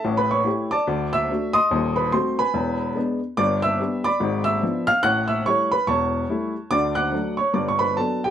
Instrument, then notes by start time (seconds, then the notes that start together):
upright piano
Already playing: A4 E5 A5
0.04 A1 A2
0.17 B4 B5
0.31 C#5 C#6
0.44 A3 E4 G4
0.71 D5 A5 D6
0.87 D2 D3
1.13 E5 E6
1.31 A3 D4 F#4
1.53 D#5 C6 D#6
1.71 D#1 D#2
1.96 B4 B5
2.12 A3 C4 F#4 C5 C6
2.39 B4 G#5 B5
2.54 E1 E2
2.95 G#3 B3 D4
3.37 G1 G2 D5 D6
3.62 E5 E6
3.80 G3 B3 D4
4.04 D5 B5 D6
4.20 G#1 G#2
4.44 E5 E6
4.63 F3 B3 D4
4.87 F5 F6
5.03 A1 A2 F#5 F#6
5.28 E5 E6
5.46 G3 A3 E4 C#5 C#6
5.71 B4 B5
5.87 E1 E2 C#5 A5 C#6
6.29 G3 A3 E4
6.71 D2 D3 D5 D6
6.95 F#5 D6 F#6
7.12 F#3 A3 D4
7.37 C#5 C#6
7.54 G1 G2 D5 D6
7.68 C#6
7.79 B4 B5
7.97 F#3 B3 D4 A4 A5
8.24 G4 G5